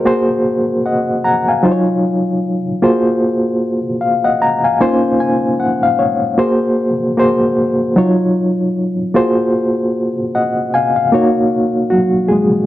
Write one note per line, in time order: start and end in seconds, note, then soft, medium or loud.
0.00 0.27 A#4 medium
0.05 0.57 A#3 medium
0.05 0.57 F#4 medium
0.05 0.57 G#4 medium
0.05 0.58 C5 medium
0.86 1.23 D#5 medium
0.86 1.23 F#5 medium
1.24 1.46 F#5 medium
1.24 1.46 A#5 medium
1.48 1.86 F5 soft
1.48 1.85 G#5 medium
1.63 2.61 F#3 medium
1.63 2.61 D#4 medium
1.63 2.61 F4 medium
1.63 1.72 C5 medium
1.71 2.65 C#5 medium
2.82 3.80 A#3 medium
2.82 3.80 F4 medium
2.82 3.80 F#4 medium
2.82 3.80 G#4 medium
2.82 3.80 C5 medium
4.01 4.23 F5 medium
4.24 4.62 D#5 medium
4.24 4.62 F#5 medium
4.42 4.78 A#5 medium
4.64 5.01 F5 soft
4.64 4.80 G#5 medium
4.80 6.08 A#3 medium
4.80 6.08 C#4 medium
4.80 6.08 D#4 medium
4.80 6.09 F4 medium
4.80 6.09 C5 loud
4.80 5.17 G#5 medium
5.20 5.57 G#5 medium
5.60 5.81 F#5 medium
5.83 5.98 F5 medium
5.99 6.36 C#5 medium
6.38 6.89 A#3 medium
6.38 6.89 F#4 medium
6.38 6.90 G#4 medium
6.38 6.90 C5 medium
7.17 7.96 A#3 medium
7.17 7.96 F#4 medium
7.17 7.97 G#4 medium
7.17 7.97 C5 medium
7.96 8.94 F#3 medium
7.96 8.94 D#4 medium
7.96 8.94 F4 medium
7.96 8.95 C#5 loud
9.14 10.12 A#3 medium
9.14 10.12 F4 medium
9.14 10.13 F#4 medium
9.14 10.13 G#4 medium
9.14 10.13 C5 loud
10.35 10.72 D#5 medium
10.35 10.72 F#5 medium
10.74 10.95 F5 medium
10.74 10.95 G#5 medium
10.96 11.34 F5 medium
11.12 12.40 A#3 medium
11.12 12.40 D#4 medium
11.12 11.89 F#4 medium
11.12 12.41 C#5 medium
11.90 12.28 F#3 medium
11.90 12.31 F#4 medium
12.28 12.49 G#3 medium
12.28 12.47 G#4 medium